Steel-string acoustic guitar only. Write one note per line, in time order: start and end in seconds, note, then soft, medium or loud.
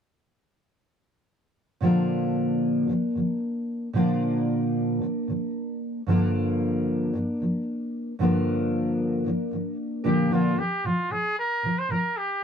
1.81 2.86 A#2 medium
1.81 2.89 D3 medium
1.81 2.90 F3 medium
1.81 3.87 A#3 medium
1.81 3.87 D4 medium
1.85 3.87 A#4 medium
2.87 3.09 A#2 soft
2.87 3.10 D3 medium
2.87 3.11 F3 medium
3.15 3.36 A#2 soft
3.15 3.37 D3 soft
3.15 3.37 F3 soft
3.93 5.00 A#2 medium
3.93 5.02 D3 medium
3.93 5.04 F3 medium
3.93 6.00 A#3 medium
3.93 6.00 D4 medium
3.98 6.00 A#4 medium
5.01 5.22 A#2 soft
5.01 5.23 D3 soft
5.01 5.24 F3 medium
5.28 5.49 A#2 soft
5.28 5.50 D3 soft
5.28 5.50 F3 soft
6.06 7.12 G2 medium
6.06 7.15 D3 medium
6.06 7.16 F3 medium
6.06 8.13 A#3 medium
6.06 8.13 D4 medium
6.11 8.13 A#4 medium
7.13 7.35 G2 medium
7.13 7.35 D3 medium
7.13 7.36 F3 medium
7.40 7.61 G2 soft
7.40 7.62 D3 soft
7.40 7.63 F3 soft
8.19 9.23 G2 medium
8.19 9.26 D3 medium
8.19 9.27 F3 medium
8.19 10.04 A#3 medium
8.19 10.04 D4 medium
8.23 10.03 A#4 medium
9.24 9.46 G2 soft
9.24 9.47 D3 medium
9.24 9.48 F3 medium
9.51 9.73 G2 soft
9.51 9.73 D3 soft
9.51 9.74 F3 soft
10.04 10.30 A#2 medium
10.04 10.30 D3 medium
10.04 10.31 F3 medium
10.04 10.31 A#3 medium
10.04 10.31 D4 medium
10.04 10.31 A#4 medium
10.31 10.56 A#2 medium
10.31 10.57 D3 medium
10.31 10.58 F3 medium
10.31 10.58 A#3 medium
10.31 10.58 D4 medium
10.31 10.58 A#4 medium
10.57 10.78 A#2 soft
10.57 10.79 D3 soft
10.57 10.80 F3 soft
10.84 11.05 A#2 soft
10.84 11.06 D3 soft
10.84 11.07 F3 medium
11.09 11.31 A#2 soft
11.09 11.32 D3 soft
11.09 11.33 F3 soft
11.63 11.84 A#2 soft
11.63 11.85 D3 soft
11.63 11.86 F3 soft
11.88 12.10 A#2 soft
11.88 12.11 D3 medium
11.88 12.12 F3 medium